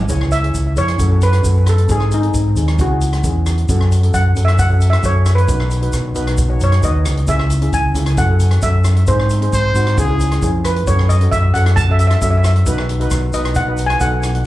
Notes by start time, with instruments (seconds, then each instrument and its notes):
0.09 fingered electric bass C#2, steel pan E4 G#4 C#5, kick, closed hi-hat, shaker
0.21 cross-stick
0.32 steel pan E5, closed hi-hat, shaker
0.43 steel pan E4 G#4 C#5, closed hi-hat
0.54 fingered electric bass C#2, kick, closed hi-hat, shaker
0.76 fingered electric bass F2, steel pan E4 G#4 C#5, closed hi-hat, shaker
0.88 cross-stick, closed hi-hat
0.98 fingered electric bass F#2, steel pan C#4 F#4 A4, kick, closed hi-hat, shaker
1.09 steel pan C#4 F#4 A4
1.22 steel pan B4, closed hi-hat, shaker
1.33 cross-stick, closed hi-hat
1.43 fingered electric bass F#2, steel pan C#4 F#4 A4, kick, closed hi-hat, shaker
1.66 steel pan A4, cross-stick, closed hi-hat, shaker
1.78 closed hi-hat
1.88 fingered electric bass G#2, steel pan C4 D#4 G#4, kick, closed hi-hat, shaker
2.00 cross-stick
2.11 steel pan D#4, closed hi-hat, shaker
2.23 steel pan C4 D#4 G#4, closed hi-hat
2.34 fingered electric bass G#2, kick, closed hi-hat, shaker
2.56 fingered electric bass D#2, steel pan C4 D#4 G#4, closed hi-hat, shaker
2.68 cross-stick, closed hi-hat
2.78 fingered electric bass C#2, steel pan C#4 E4 F#4 G#4, kick, closed hi-hat, shaker
2.90 steel pan C#4 E4 G#4
3.01 closed hi-hat, shaker
3.13 cross-stick, closed hi-hat
3.23 fingered electric bass E2, steel pan C#4 E4 G#4, kick, closed hi-hat, shaker
3.46 cross-stick, closed hi-hat, shaker
3.58 closed hi-hat
3.69 fingered electric bass F#2, steel pan C#4 F#4 A4, kick, closed hi-hat, shaker
3.81 cross-stick
3.92 closed hi-hat, shaker
4.02 steel pan C#4 F#4 A4, closed hi-hat
4.14 fingered electric bass F#2, steel pan F#5, kick, closed hi-hat, shaker
4.35 fingered electric bass F#2, steel pan C#4 F#4 A4, closed hi-hat, shaker
4.45 steel pan E5, cross-stick, closed hi-hat
4.59 steel pan F#5, kick, closed hi-hat, shaker
4.69 steel pan C#4 F#4 A4
4.81 closed hi-hat, shaker
4.90 steel pan E5, cross-stick, closed hi-hat
5.03 fingered electric bass F#2, steel pan C#4 F#4 A4 C#5, kick, closed hi-hat, shaker
5.26 cross-stick, closed hi-hat, shaker
5.35 steel pan B4, closed hi-hat
5.47 fingered electric bass B1, steel pan D#4 F#4 B4, kick, closed hi-hat, shaker
5.60 cross-stick
5.71 closed hi-hat, shaker
5.81 steel pan D#4 F#4 B4, closed hi-hat
5.93 fingered electric bass B1, kick, cross-stick, closed hi-hat, shaker
6.15 fingered electric bass B1, steel pan D#4 F#4 B4, closed hi-hat, shaker
6.27 cross-stick, closed hi-hat
6.37 kick, closed hi-hat, shaker
6.48 steel pan D#4 F#4 C#5
6.60 fingered electric bass F#2, steel pan C#5, closed hi-hat, shaker
6.72 cross-stick, closed hi-hat
6.81 fingered electric bass D#2, steel pan D#4 F#4 B4 D#5, kick, closed hi-hat, shaker
7.05 fingered electric bass C#2, cross-stick, closed hi-hat, shaker
7.17 closed hi-hat
7.27 fingered electric bass C#2, steel pan C#4 E4 G#4 E5, kick, closed hi-hat, shaker
7.39 cross-stick
7.50 closed hi-hat, shaker
7.61 steel pan C#4 E4 G#4, closed hi-hat
7.73 fingered electric bass C#2, steel pan G#5, kick, closed hi-hat, shaker
7.94 fingered electric bass C#2, steel pan C#4 E4 G#4, closed hi-hat, shaker
8.06 cross-stick, closed hi-hat
8.17 fingered electric bass F#2, steel pan C#4 F#4 A4 F#5, kick, closed hi-hat, shaker
8.29 steel pan C#4 F#4 A4
8.40 closed hi-hat, shaker
8.51 cross-stick, closed hi-hat
8.62 fingered electric bass F#2, steel pan C#4 F#4 A4 E5, kick, closed hi-hat, shaker
8.84 cross-stick, closed hi-hat, shaker
8.96 closed hi-hat
9.07 fingered electric bass G#2, steel pan C4 D#4 G#4 C5, kick, closed hi-hat, shaker
9.20 cross-stick
9.30 closed hi-hat, shaker
9.41 steel pan C4 D#4 G#4, closed hi-hat
9.53 fingered electric bass G#2, trumpet C5, kick, closed hi-hat, shaker
9.74 fingered electric bass G#2, steel pan C4 D#4 F#4, closed hi-hat, shaker
9.87 cross-stick, closed hi-hat
9.97 fingered electric bass C#2, steel pan C#4 E4 G#4, trumpet G#4, kick, closed hi-hat, shaker
10.09 steel pan C#4 E4 G#4
10.20 closed hi-hat, shaker
10.32 cross-stick, closed hi-hat
10.42 fingered electric bass F2, steel pan C#4 E4 G#4, kick, closed hi-hat, shaker
10.65 steel pan B4, cross-stick, closed hi-hat, shaker
10.76 closed hi-hat
10.87 fingered electric bass F#2, steel pan C#4 F#4 A4 C#5, kick, closed hi-hat, shaker
10.99 cross-stick
11.09 steel pan D#5, closed hi-hat, shaker
11.21 steel pan C#4 F#4 A4, closed hi-hat
11.31 fingered electric bass F#2, steel pan E5, kick, closed hi-hat, shaker
11.54 fingered electric bass F#2, steel pan C#4 F#4 A4 F#5, closed hi-hat, shaker
11.66 cross-stick, closed hi-hat
11.76 steel pan A5, kick, closed hi-hat, shaker
11.89 steel pan C#4 F#4 A4 E5
11.99 steel pan E5, closed hi-hat, shaker
12.07 steel pan E5, cross-stick, closed hi-hat
12.14 steel pan E5
12.21 fingered electric bass F#2, steel pan C#4 F#4 A4 E5, kick, closed hi-hat, shaker
12.31 steel pan E5
12.38 steel pan E5
12.44 steel pan E5, cross-stick, closed hi-hat, shaker
12.56 closed hi-hat
12.66 fingered electric bass B1, steel pan D#4 F#4 B4, kick, closed hi-hat, shaker
12.78 cross-stick
12.89 closed hi-hat
13.00 steel pan D#4 F#4 B4, closed hi-hat
13.11 fingered electric bass B1, kick, cross-stick, closed hi-hat, shaker
13.33 fingered electric bass B1, steel pan D#4 F#4 B4 D#5, closed hi-hat, shaker
13.45 cross-stick, closed hi-hat
13.55 steel pan F#5, kick, closed hi-hat, shaker
13.67 steel pan D#4 F#4 B4
13.77 closed hi-hat, shaker
13.86 steel pan G#5, cross-stick, closed hi-hat
14.00 fingered electric bass B1, steel pan D#4 F#4 A4 F#5, kick, closed hi-hat, shaker
14.23 cross-stick, closed hi-hat, shaker
14.35 closed hi-hat